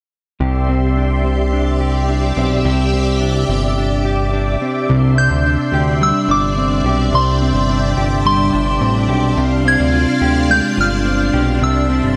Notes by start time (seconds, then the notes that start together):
0.40 C2 C3 G4 D5 E5 C6
0.69 C4
0.97 D4
1.24 C4
1.53 D4
1.81 G4
2.09 D4
2.37 B1 C4
2.64 C2 C3 G4 D6
2.93 C4
3.21 D4
3.49 G1 C4
3.78 D4
4.05 G4
4.33 D4
4.62 C4
4.89 C2 C3 D4 D5 E5 C6
5.18 C4 G6
5.31 D2
5.46 D4
5.72 D2 G4
6.01 G3 E6
6.28 G1 D4 D6
6.58 C4
6.84 B1 G4
7.12 C2 C3 G5 C6
7.42 C4
7.54 G1
7.70 D4
7.97 G1 G4
8.25 G3 C6
8.53 G1 D4
8.81 A1 C4
9.09 B1 G4
9.36 C2 C3 F5 C6
9.65 C4 G#6
9.80 D2
9.93 F4
10.21 D2 G4
10.49 G#3 G6
10.77 G1 F4 F6
11.05 C4
11.33 B1 G4
11.61 C2 C3 E5 A5 C6 E6
11.90 C4
12.04 G1